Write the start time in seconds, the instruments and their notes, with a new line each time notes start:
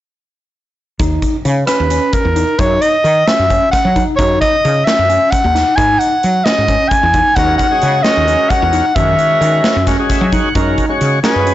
1.00 fretless electric bass D#2, tine electric piano D#4, kick, closed hi-hat
1.22 kick, closed hi-hat
1.45 fretless electric bass C#3, closed hi-hat
1.67 tine electric piano C#4, soprano saxophone B4, cross-stick, closed hi-hat
1.80 fretless electric bass D#2
1.90 tine electric piano C#4, closed hi-hat
2.13 soprano saxophone A#4, kick, closed hi-hat
2.25 fretless electric bass E2
2.36 tine electric piano D#4, closed hi-hat
2.59 fretless electric bass F#2, tine electric piano D#4, soprano saxophone C#5, kick, closed hi-hat
2.82 soprano saxophone D#5, closed hi-hat
3.04 fretless electric bass D#3, closed hi-hat
3.28 tine electric piano C#4, soprano saxophone E5, snare, closed hi-hat
3.39 fretless electric bass F#2
3.50 tine electric piano C#4, kick, closed hi-hat
3.71 soprano saxophone F#5, kick, snare, closed hi-hat
3.85 fretless electric bass F#3
3.96 tine electric piano D#4, kick, closed hi-hat
4.17 fretless electric bass F#2, tine electric piano D#4, soprano saxophone C#5, kick, closed hi-hat
4.41 soprano saxophone D#5, kick, closed hi-hat
4.65 fretless electric bass C#3, closed hi-hat
4.85 tine electric piano C#4, soprano saxophone E5, snare, closed hi-hat
4.99 fretless electric bass F#2
5.09 tine electric piano C#4, closed hi-hat
5.31 soprano saxophone F#5, kick, closed hi-hat
5.44 fretless electric bass D#2
5.55 tine electric piano D#4, snare, closed hi-hat
5.76 fretless electric bass G#2, tine electric piano D#4, soprano saxophone G#5, kick, closed hi-hat
5.99 soprano saxophone F#5, closed hi-hat
6.23 fretless electric bass F#3, closed hi-hat
6.45 tine electric piano C#4, soprano saxophone D#5, snare, closed hi-hat
6.58 fretless electric bass G#2
6.68 tine electric piano C#4, kick, closed hi-hat
6.89 soprano saxophone G#5, kick, closed hi-hat
7.03 fretless electric bass E2
7.14 tine electric piano D#4, kick, closed hi-hat
7.36 fretless electric bass D#2, tonewheel organ G#3 C#4 F#4 A#4, tine electric piano D#4, soprano saxophone F#5, kick, closed hi-hat
7.58 soprano saxophone F#5, kick, closed hi-hat
7.70 tonewheel organ G#3 C#4 F#4 G#4
7.82 fretless electric bass C#3, closed hi-hat
8.03 tonewheel organ G#3 C#4 F#4 A#4, tine electric piano C#4, soprano saxophone D#5, snare, closed hi-hat
8.17 fretless electric bass D#2
8.27 tine electric piano C#4, closed hi-hat
8.50 soprano saxophone F#5, kick, closed hi-hat
8.62 fretless electric bass E2
8.73 tine electric piano D#4, closed hi-hat
8.96 fretless electric bass F#2, tine electric piano D#3, tonewheel organ G#3 C#4 F#4 A#4, soprano saxophone E5, kick, closed hi-hat
9.19 closed hi-hat
9.41 fretless electric bass D#3, closed hi-hat
9.64 tine electric piano C#4, snare, closed hi-hat
9.76 fretless electric bass F#2
9.87 tonewheel organ G#3 C#4 F#4 A#4, tine electric piano C#4, kick, snare, closed hi-hat
9.98 tonewheel organ G#3 C#4 F#4 G#4
10.10 tonewheel organ E5, kick, snare, closed hi-hat
10.21 fretless electric bass F#3
10.32 tine electric piano D#4, tonewheel organ F#5, kick, closed hi-hat
10.55 fretless electric bass F#2, tonewheel organ G#3 C#4 F#4 A#4, tine electric piano D#4, kick, closed hi-hat
10.78 kick, closed hi-hat
10.89 tonewheel organ G#3 C#4 F#4 C#5
11.01 fretless electric bass C#3, closed hi-hat
11.23 tonewheel organ G#3 C#4 F#4 G#4, tine electric piano C#4, soprano saxophone B4, snare, closed hi-hat
11.35 fretless electric bass F#2
11.46 tine electric piano C#4, closed hi-hat